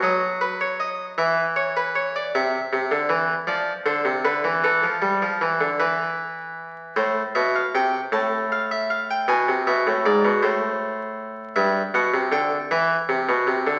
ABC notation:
X:1
M:6/8
L:1/16
Q:3/8=52
K:Em
V:1 name="Harpsichord"
^d2 B ^c d2 e2 c B c =d | [K:Am] e6 d2 c2 B2 | A6 B6 | c2 e f g2 a2 f e f g |
^g2 e2 d2 c6 | e2 ^f2 g2 e6 |]
V:2 name="Harpsichord" clef=bass
F,6 E,6 | [K:Am] C,2 C, D, E,2 F,2 D, C, D, E, | E, F, G, F, E, D, E,6 | A,,2 B,,2 C,2 A,,6 |
B,, C, B,, A,, ^G,, B,, A,,6 | G,,2 B,, C, D,2 E,2 C, B,, C, D, |]